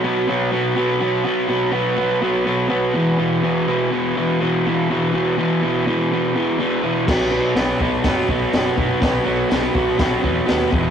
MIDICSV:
0, 0, Header, 1, 4, 480
1, 0, Start_track
1, 0, Tempo, 486224
1, 1224, Time_signature, 4, 2, 24, 8
1, 10763, End_track
2, 0, Start_track
2, 0, Title_t, "Overdriven electric guitar"
2, 0, Program_c, 0, 29
2, 35, Note_on_c, 0, 47, 99
2, 42, Note_on_c, 0, 54, 107
2, 50, Note_on_c, 0, 59, 116
2, 268, Note_off_c, 0, 47, 0
2, 277, Note_off_c, 0, 54, 0
2, 279, Note_on_c, 0, 47, 86
2, 288, Note_on_c, 0, 54, 97
2, 289, Note_off_c, 0, 59, 0
2, 293, Note_on_c, 0, 59, 85
2, 502, Note_off_c, 0, 47, 0
2, 505, Note_off_c, 0, 54, 0
2, 514, Note_on_c, 0, 47, 91
2, 517, Note_on_c, 0, 54, 84
2, 525, Note_off_c, 0, 59, 0
2, 529, Note_on_c, 0, 59, 94
2, 743, Note_off_c, 0, 47, 0
2, 746, Note_off_c, 0, 54, 0
2, 755, Note_on_c, 0, 47, 104
2, 758, Note_on_c, 0, 54, 102
2, 762, Note_off_c, 0, 59, 0
2, 766, Note_on_c, 0, 59, 108
2, 980, Note_off_c, 0, 47, 0
2, 986, Note_off_c, 0, 54, 0
2, 992, Note_on_c, 0, 47, 100
2, 998, Note_off_c, 0, 59, 0
2, 998, Note_on_c, 0, 54, 88
2, 1002, Note_on_c, 0, 59, 104
2, 1217, Note_off_c, 0, 47, 0
2, 1222, Note_off_c, 0, 54, 0
2, 1228, Note_on_c, 0, 47, 99
2, 1232, Note_off_c, 0, 59, 0
2, 1233, Note_on_c, 0, 54, 96
2, 1235, Note_on_c, 0, 59, 104
2, 1453, Note_off_c, 0, 47, 0
2, 1460, Note_off_c, 0, 54, 0
2, 1464, Note_on_c, 0, 47, 96
2, 1471, Note_off_c, 0, 59, 0
2, 1472, Note_on_c, 0, 54, 97
2, 1475, Note_on_c, 0, 59, 102
2, 1689, Note_off_c, 0, 47, 0
2, 1693, Note_off_c, 0, 54, 0
2, 1701, Note_on_c, 0, 47, 85
2, 1705, Note_on_c, 0, 54, 98
2, 1708, Note_off_c, 0, 59, 0
2, 1712, Note_on_c, 0, 59, 102
2, 1936, Note_off_c, 0, 47, 0
2, 1942, Note_off_c, 0, 54, 0
2, 1947, Note_on_c, 0, 47, 99
2, 1954, Note_on_c, 0, 54, 123
2, 1957, Note_off_c, 0, 59, 0
2, 1961, Note_on_c, 0, 59, 119
2, 2177, Note_off_c, 0, 47, 0
2, 2183, Note_off_c, 0, 54, 0
2, 2188, Note_off_c, 0, 59, 0
2, 2189, Note_on_c, 0, 47, 87
2, 2192, Note_on_c, 0, 59, 102
2, 2194, Note_on_c, 0, 54, 89
2, 2412, Note_off_c, 0, 47, 0
2, 2423, Note_off_c, 0, 54, 0
2, 2424, Note_on_c, 0, 47, 90
2, 2431, Note_off_c, 0, 59, 0
2, 2435, Note_on_c, 0, 54, 99
2, 2435, Note_on_c, 0, 59, 96
2, 2638, Note_off_c, 0, 47, 0
2, 2650, Note_on_c, 0, 47, 103
2, 2651, Note_off_c, 0, 54, 0
2, 2661, Note_off_c, 0, 59, 0
2, 2662, Note_on_c, 0, 54, 98
2, 2665, Note_on_c, 0, 59, 118
2, 2885, Note_off_c, 0, 47, 0
2, 2891, Note_off_c, 0, 54, 0
2, 2900, Note_on_c, 0, 40, 111
2, 2909, Note_on_c, 0, 47, 100
2, 2912, Note_on_c, 0, 52, 110
2, 3135, Note_off_c, 0, 40, 0
2, 3138, Note_off_c, 0, 47, 0
2, 3139, Note_on_c, 0, 40, 97
2, 3146, Note_off_c, 0, 52, 0
2, 3149, Note_on_c, 0, 47, 106
2, 3150, Note_on_c, 0, 52, 106
2, 3372, Note_off_c, 0, 47, 0
2, 3374, Note_off_c, 0, 40, 0
2, 3378, Note_on_c, 0, 40, 93
2, 3384, Note_on_c, 0, 47, 95
2, 3387, Note_off_c, 0, 52, 0
2, 3391, Note_on_c, 0, 52, 98
2, 3619, Note_off_c, 0, 47, 0
2, 3621, Note_off_c, 0, 40, 0
2, 3625, Note_on_c, 0, 40, 93
2, 3631, Note_on_c, 0, 47, 100
2, 3634, Note_off_c, 0, 52, 0
2, 3638, Note_on_c, 0, 52, 109
2, 3854, Note_off_c, 0, 47, 0
2, 3858, Note_off_c, 0, 40, 0
2, 3862, Note_on_c, 0, 40, 102
2, 3866, Note_on_c, 0, 47, 116
2, 3869, Note_off_c, 0, 52, 0
2, 3873, Note_on_c, 0, 52, 109
2, 4093, Note_off_c, 0, 40, 0
2, 4102, Note_off_c, 0, 47, 0
2, 4105, Note_on_c, 0, 40, 89
2, 4106, Note_off_c, 0, 52, 0
2, 4114, Note_on_c, 0, 47, 102
2, 4118, Note_on_c, 0, 52, 95
2, 4336, Note_off_c, 0, 40, 0
2, 4343, Note_off_c, 0, 47, 0
2, 4346, Note_off_c, 0, 52, 0
2, 4348, Note_on_c, 0, 40, 96
2, 4355, Note_on_c, 0, 47, 93
2, 4358, Note_on_c, 0, 52, 97
2, 4590, Note_off_c, 0, 40, 0
2, 4595, Note_off_c, 0, 47, 0
2, 4602, Note_off_c, 0, 52, 0
2, 4602, Note_on_c, 0, 40, 106
2, 4607, Note_on_c, 0, 47, 105
2, 4614, Note_on_c, 0, 52, 113
2, 4821, Note_off_c, 0, 40, 0
2, 4822, Note_off_c, 0, 47, 0
2, 4833, Note_on_c, 0, 40, 86
2, 4834, Note_on_c, 0, 47, 88
2, 4835, Note_off_c, 0, 52, 0
2, 4847, Note_on_c, 0, 52, 103
2, 5052, Note_off_c, 0, 40, 0
2, 5061, Note_off_c, 0, 52, 0
2, 5062, Note_off_c, 0, 47, 0
2, 5064, Note_on_c, 0, 40, 86
2, 5073, Note_on_c, 0, 52, 99
2, 5074, Note_on_c, 0, 47, 98
2, 5291, Note_off_c, 0, 40, 0
2, 5302, Note_on_c, 0, 40, 91
2, 5303, Note_off_c, 0, 47, 0
2, 5304, Note_off_c, 0, 52, 0
2, 5315, Note_on_c, 0, 47, 95
2, 5316, Note_on_c, 0, 52, 102
2, 5534, Note_off_c, 0, 40, 0
2, 5545, Note_on_c, 0, 40, 99
2, 5546, Note_off_c, 0, 47, 0
2, 5549, Note_off_c, 0, 52, 0
2, 5558, Note_on_c, 0, 47, 90
2, 5561, Note_on_c, 0, 52, 97
2, 5776, Note_off_c, 0, 40, 0
2, 5783, Note_off_c, 0, 47, 0
2, 5785, Note_off_c, 0, 52, 0
2, 5787, Note_on_c, 0, 40, 100
2, 5795, Note_on_c, 0, 47, 112
2, 5797, Note_on_c, 0, 52, 120
2, 6032, Note_off_c, 0, 40, 0
2, 6035, Note_off_c, 0, 47, 0
2, 6040, Note_off_c, 0, 52, 0
2, 6044, Note_on_c, 0, 40, 91
2, 6047, Note_on_c, 0, 47, 88
2, 6052, Note_on_c, 0, 52, 95
2, 6120, Note_off_c, 0, 59, 0
2, 6254, Note_off_c, 0, 40, 0
2, 6265, Note_off_c, 0, 47, 0
2, 6266, Note_on_c, 0, 40, 86
2, 6269, Note_off_c, 0, 52, 0
2, 6277, Note_on_c, 0, 47, 94
2, 6281, Note_on_c, 0, 52, 96
2, 6484, Note_off_c, 0, 40, 0
2, 6496, Note_off_c, 0, 47, 0
2, 6496, Note_on_c, 0, 40, 95
2, 6498, Note_off_c, 0, 52, 0
2, 6508, Note_on_c, 0, 47, 101
2, 6510, Note_on_c, 0, 52, 114
2, 6731, Note_off_c, 0, 40, 0
2, 6740, Note_off_c, 0, 47, 0
2, 6742, Note_on_c, 0, 40, 86
2, 6746, Note_off_c, 0, 52, 0
2, 6752, Note_on_c, 0, 47, 100
2, 6757, Note_on_c, 0, 52, 103
2, 6971, Note_off_c, 0, 40, 0
2, 6972, Note_off_c, 0, 47, 0
2, 6978, Note_off_c, 0, 52, 0
2, 6982, Note_on_c, 0, 54, 106
2, 6984, Note_on_c, 0, 47, 98
2, 6995, Note_on_c, 0, 59, 105
2, 7217, Note_off_c, 0, 47, 0
2, 7221, Note_on_c, 0, 47, 90
2, 7225, Note_off_c, 0, 54, 0
2, 7227, Note_off_c, 0, 59, 0
2, 7229, Note_on_c, 0, 54, 89
2, 7231, Note_on_c, 0, 59, 111
2, 7453, Note_off_c, 0, 47, 0
2, 7457, Note_on_c, 0, 47, 97
2, 7459, Note_off_c, 0, 54, 0
2, 7462, Note_off_c, 0, 59, 0
2, 7463, Note_on_c, 0, 54, 94
2, 7466, Note_on_c, 0, 59, 100
2, 7685, Note_off_c, 0, 47, 0
2, 7693, Note_off_c, 0, 54, 0
2, 7697, Note_on_c, 0, 47, 108
2, 7704, Note_on_c, 0, 54, 105
2, 7705, Note_off_c, 0, 59, 0
2, 7709, Note_on_c, 0, 59, 121
2, 7917, Note_off_c, 0, 47, 0
2, 7924, Note_off_c, 0, 54, 0
2, 7929, Note_on_c, 0, 47, 89
2, 7932, Note_off_c, 0, 59, 0
2, 7936, Note_on_c, 0, 54, 95
2, 7936, Note_on_c, 0, 59, 92
2, 8168, Note_off_c, 0, 47, 0
2, 8176, Note_off_c, 0, 54, 0
2, 8180, Note_on_c, 0, 47, 92
2, 8188, Note_off_c, 0, 59, 0
2, 8188, Note_on_c, 0, 54, 94
2, 8192, Note_on_c, 0, 59, 99
2, 8412, Note_off_c, 0, 47, 0
2, 8418, Note_off_c, 0, 54, 0
2, 8424, Note_on_c, 0, 47, 100
2, 8430, Note_on_c, 0, 54, 103
2, 8435, Note_off_c, 0, 59, 0
2, 8439, Note_on_c, 0, 59, 108
2, 8642, Note_off_c, 0, 47, 0
2, 8653, Note_off_c, 0, 54, 0
2, 8654, Note_on_c, 0, 47, 99
2, 8661, Note_off_c, 0, 59, 0
2, 8665, Note_on_c, 0, 54, 90
2, 8665, Note_on_c, 0, 59, 99
2, 8878, Note_off_c, 0, 47, 0
2, 8887, Note_off_c, 0, 54, 0
2, 8890, Note_on_c, 0, 47, 97
2, 8899, Note_on_c, 0, 54, 105
2, 8904, Note_off_c, 0, 59, 0
2, 8907, Note_on_c, 0, 59, 110
2, 9119, Note_off_c, 0, 47, 0
2, 9125, Note_off_c, 0, 54, 0
2, 9131, Note_on_c, 0, 47, 96
2, 9137, Note_on_c, 0, 54, 102
2, 9139, Note_off_c, 0, 59, 0
2, 9142, Note_on_c, 0, 59, 96
2, 9366, Note_off_c, 0, 47, 0
2, 9377, Note_off_c, 0, 54, 0
2, 9378, Note_on_c, 0, 47, 98
2, 9382, Note_off_c, 0, 59, 0
2, 9386, Note_on_c, 0, 59, 107
2, 9388, Note_on_c, 0, 54, 105
2, 9608, Note_off_c, 0, 47, 0
2, 9611, Note_off_c, 0, 54, 0
2, 9620, Note_on_c, 0, 47, 102
2, 9623, Note_off_c, 0, 59, 0
2, 9623, Note_on_c, 0, 54, 108
2, 9627, Note_on_c, 0, 59, 116
2, 9842, Note_off_c, 0, 47, 0
2, 9847, Note_off_c, 0, 54, 0
2, 9854, Note_off_c, 0, 59, 0
2, 9854, Note_on_c, 0, 47, 79
2, 9858, Note_on_c, 0, 54, 94
2, 9865, Note_on_c, 0, 59, 94
2, 10078, Note_off_c, 0, 47, 0
2, 10086, Note_off_c, 0, 54, 0
2, 10090, Note_off_c, 0, 59, 0
2, 10090, Note_on_c, 0, 47, 87
2, 10098, Note_on_c, 0, 54, 96
2, 10102, Note_on_c, 0, 59, 105
2, 10317, Note_off_c, 0, 54, 0
2, 10320, Note_off_c, 0, 47, 0
2, 10326, Note_off_c, 0, 59, 0
2, 10329, Note_on_c, 0, 54, 105
2, 10332, Note_on_c, 0, 47, 97
2, 10338, Note_on_c, 0, 59, 123
2, 10558, Note_off_c, 0, 47, 0
2, 10560, Note_off_c, 0, 54, 0
2, 10565, Note_off_c, 0, 59, 0
2, 10566, Note_on_c, 0, 40, 111
2, 10570, Note_on_c, 0, 47, 109
2, 10576, Note_on_c, 0, 52, 112
2, 10763, Note_off_c, 0, 40, 0
2, 10763, Note_off_c, 0, 47, 0
2, 10763, Note_off_c, 0, 52, 0
2, 10763, End_track
3, 0, Start_track
3, 0, Title_t, "Picked electric bass"
3, 0, Program_c, 1, 34
3, 6989, Note_on_c, 1, 35, 92
3, 7290, Note_off_c, 1, 35, 0
3, 7456, Note_on_c, 1, 35, 94
3, 7610, Note_off_c, 1, 35, 0
3, 7706, Note_on_c, 1, 35, 89
3, 7857, Note_off_c, 1, 35, 0
3, 7944, Note_on_c, 1, 30, 98
3, 8096, Note_off_c, 1, 30, 0
3, 8180, Note_on_c, 1, 35, 95
3, 8333, Note_off_c, 1, 35, 0
3, 8429, Note_on_c, 1, 30, 95
3, 8578, Note_off_c, 1, 30, 0
3, 8665, Note_on_c, 1, 30, 98
3, 8816, Note_off_c, 1, 30, 0
3, 8905, Note_on_c, 1, 35, 95
3, 9056, Note_off_c, 1, 35, 0
3, 9155, Note_on_c, 1, 35, 84
3, 9302, Note_off_c, 1, 35, 0
3, 9396, Note_on_c, 1, 35, 94
3, 9543, Note_off_c, 1, 35, 0
3, 9632, Note_on_c, 1, 35, 94
3, 9780, Note_off_c, 1, 35, 0
3, 9864, Note_on_c, 1, 35, 94
3, 10014, Note_off_c, 1, 35, 0
3, 10111, Note_on_c, 1, 40, 94
3, 10258, Note_off_c, 1, 40, 0
3, 10363, Note_on_c, 1, 39, 93
3, 10507, Note_off_c, 1, 39, 0
3, 10589, Note_on_c, 1, 28, 96
3, 10737, Note_off_c, 1, 28, 0
3, 10763, End_track
4, 0, Start_track
4, 0, Title_t, "Drums"
4, 6991, Note_on_c, 9, 36, 116
4, 6992, Note_on_c, 9, 49, 114
4, 6999, Note_on_c, 9, 38, 114
4, 7089, Note_off_c, 9, 36, 0
4, 7090, Note_off_c, 9, 49, 0
4, 7097, Note_off_c, 9, 38, 0
4, 7466, Note_on_c, 9, 46, 72
4, 7473, Note_on_c, 9, 38, 125
4, 7565, Note_off_c, 9, 46, 0
4, 7572, Note_off_c, 9, 38, 0
4, 7704, Note_on_c, 9, 36, 81
4, 7802, Note_off_c, 9, 36, 0
4, 7937, Note_on_c, 9, 46, 67
4, 7940, Note_on_c, 9, 36, 116
4, 7944, Note_on_c, 9, 38, 120
4, 8036, Note_off_c, 9, 46, 0
4, 8039, Note_off_c, 9, 36, 0
4, 8042, Note_off_c, 9, 38, 0
4, 8180, Note_on_c, 9, 36, 84
4, 8279, Note_off_c, 9, 36, 0
4, 8422, Note_on_c, 9, 46, 62
4, 8429, Note_on_c, 9, 38, 108
4, 8521, Note_off_c, 9, 46, 0
4, 8528, Note_off_c, 9, 38, 0
4, 8664, Note_on_c, 9, 36, 91
4, 8763, Note_off_c, 9, 36, 0
4, 8904, Note_on_c, 9, 36, 118
4, 8909, Note_on_c, 9, 46, 66
4, 8916, Note_on_c, 9, 38, 126
4, 9003, Note_off_c, 9, 36, 0
4, 9007, Note_off_c, 9, 46, 0
4, 9014, Note_off_c, 9, 38, 0
4, 9389, Note_on_c, 9, 46, 72
4, 9396, Note_on_c, 9, 38, 123
4, 9487, Note_off_c, 9, 46, 0
4, 9494, Note_off_c, 9, 38, 0
4, 9625, Note_on_c, 9, 36, 81
4, 9724, Note_off_c, 9, 36, 0
4, 9863, Note_on_c, 9, 46, 66
4, 9865, Note_on_c, 9, 36, 119
4, 9870, Note_on_c, 9, 38, 121
4, 9961, Note_off_c, 9, 46, 0
4, 9964, Note_off_c, 9, 36, 0
4, 9968, Note_off_c, 9, 38, 0
4, 10109, Note_on_c, 9, 36, 82
4, 10207, Note_off_c, 9, 36, 0
4, 10348, Note_on_c, 9, 46, 69
4, 10355, Note_on_c, 9, 38, 121
4, 10446, Note_off_c, 9, 46, 0
4, 10453, Note_off_c, 9, 38, 0
4, 10588, Note_on_c, 9, 36, 121
4, 10687, Note_off_c, 9, 36, 0
4, 10763, End_track
0, 0, End_of_file